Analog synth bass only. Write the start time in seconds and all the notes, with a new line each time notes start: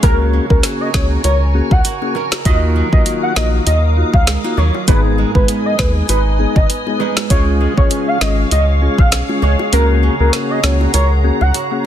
0.03 C#2
0.50 C#2
0.94 C#2
1.24 C#2
1.71 C#2
2.45 D#2
2.93 B1
3.36 A#1
3.67 D#2
4.14 C#2
4.57 D#2
4.88 G#1
5.35 G#1
5.79 D#2
6.09 G#1
6.56 G#1
7.30 C#2
7.78 A#1
8.21 G#1
8.51 C#2
8.98 B1
9.42 C#2
9.73 C#2
10.20 C#2
10.64 C#2
10.94 C#2
11.41 C#2